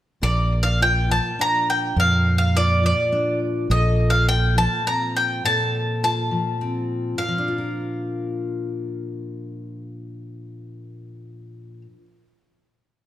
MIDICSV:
0, 0, Header, 1, 4, 480
1, 0, Start_track
1, 0, Key_signature, -2, "major"
1, 0, Tempo, 579710
1, 185, Time_signature, 3, 2, 24, 8
1, 10816, End_track
2, 0, Start_track
2, 0, Title_t, "Mandolin"
2, 0, Program_c, 0, 25
2, 191, Note_on_c, 0, 74, 69
2, 518, Note_off_c, 0, 74, 0
2, 521, Note_on_c, 0, 77, 70
2, 678, Note_off_c, 0, 77, 0
2, 683, Note_on_c, 0, 79, 71
2, 920, Note_off_c, 0, 79, 0
2, 923, Note_on_c, 0, 81, 75
2, 1162, Note_off_c, 0, 81, 0
2, 1170, Note_on_c, 0, 82, 77
2, 1403, Note_off_c, 0, 82, 0
2, 1406, Note_on_c, 0, 79, 69
2, 1643, Note_off_c, 0, 79, 0
2, 1654, Note_on_c, 0, 77, 72
2, 1963, Note_off_c, 0, 77, 0
2, 1973, Note_on_c, 0, 77, 64
2, 2124, Note_off_c, 0, 77, 0
2, 2125, Note_on_c, 0, 74, 73
2, 2357, Note_off_c, 0, 74, 0
2, 2367, Note_on_c, 0, 74, 63
2, 2803, Note_off_c, 0, 74, 0
2, 3074, Note_on_c, 0, 75, 67
2, 3396, Note_on_c, 0, 77, 69
2, 3399, Note_off_c, 0, 75, 0
2, 3545, Note_off_c, 0, 77, 0
2, 3549, Note_on_c, 0, 79, 76
2, 3789, Note_off_c, 0, 79, 0
2, 3792, Note_on_c, 0, 81, 82
2, 4030, Note_off_c, 0, 81, 0
2, 4033, Note_on_c, 0, 82, 77
2, 4252, Note_off_c, 0, 82, 0
2, 4277, Note_on_c, 0, 79, 72
2, 4514, Note_off_c, 0, 79, 0
2, 4517, Note_on_c, 0, 81, 77
2, 4992, Note_off_c, 0, 81, 0
2, 5002, Note_on_c, 0, 81, 64
2, 5438, Note_off_c, 0, 81, 0
2, 5946, Note_on_c, 0, 77, 60
2, 9781, Note_off_c, 0, 77, 0
2, 10816, End_track
3, 0, Start_track
3, 0, Title_t, "Steel-string acoustic guitar"
3, 0, Program_c, 1, 25
3, 178, Note_on_c, 1, 46, 54
3, 185, Note_on_c, 1, 70, 49
3, 673, Note_on_c, 1, 65, 44
3, 904, Note_on_c, 1, 53, 52
3, 1153, Note_on_c, 1, 62, 50
3, 1594, Note_off_c, 1, 46, 0
3, 1598, Note_off_c, 1, 70, 0
3, 1601, Note_off_c, 1, 62, 0
3, 1624, Note_on_c, 1, 46, 55
3, 1629, Note_on_c, 1, 70, 50
3, 2106, Note_off_c, 1, 65, 0
3, 2110, Note_on_c, 1, 65, 50
3, 2342, Note_off_c, 1, 53, 0
3, 2345, Note_on_c, 1, 53, 51
3, 2587, Note_on_c, 1, 62, 49
3, 3036, Note_off_c, 1, 46, 0
3, 3037, Note_off_c, 1, 62, 0
3, 3038, Note_off_c, 1, 70, 0
3, 3063, Note_on_c, 1, 46, 57
3, 3068, Note_on_c, 1, 69, 57
3, 3544, Note_off_c, 1, 65, 0
3, 3547, Note_on_c, 1, 65, 49
3, 3778, Note_off_c, 1, 53, 0
3, 3781, Note_on_c, 1, 53, 54
3, 4031, Note_on_c, 1, 60, 49
3, 4474, Note_off_c, 1, 46, 0
3, 4476, Note_off_c, 1, 69, 0
3, 4478, Note_off_c, 1, 60, 0
3, 4508, Note_on_c, 1, 46, 60
3, 4515, Note_on_c, 1, 69, 55
3, 4993, Note_off_c, 1, 65, 0
3, 4996, Note_on_c, 1, 65, 50
3, 5216, Note_off_c, 1, 53, 0
3, 5226, Note_on_c, 1, 53, 53
3, 5474, Note_on_c, 1, 60, 49
3, 5915, Note_off_c, 1, 46, 0
3, 5918, Note_off_c, 1, 60, 0
3, 5918, Note_off_c, 1, 69, 0
3, 5919, Note_off_c, 1, 65, 0
3, 5949, Note_on_c, 1, 46, 52
3, 6020, Note_off_c, 1, 53, 0
3, 6030, Note_on_c, 1, 53, 48
3, 6112, Note_on_c, 1, 62, 51
3, 6194, Note_on_c, 1, 65, 45
3, 6278, Note_on_c, 1, 70, 42
3, 9817, Note_off_c, 1, 46, 0
3, 9898, Note_off_c, 1, 53, 0
3, 9980, Note_off_c, 1, 62, 0
3, 10062, Note_off_c, 1, 65, 0
3, 10146, Note_off_c, 1, 70, 0
3, 10816, End_track
4, 0, Start_track
4, 0, Title_t, "Fingered electric bass"
4, 0, Program_c, 2, 33
4, 187, Note_on_c, 2, 34, 83
4, 984, Note_off_c, 2, 34, 0
4, 1625, Note_on_c, 2, 41, 81
4, 2423, Note_off_c, 2, 41, 0
4, 3062, Note_on_c, 2, 34, 82
4, 3859, Note_off_c, 2, 34, 0
4, 10816, End_track
0, 0, End_of_file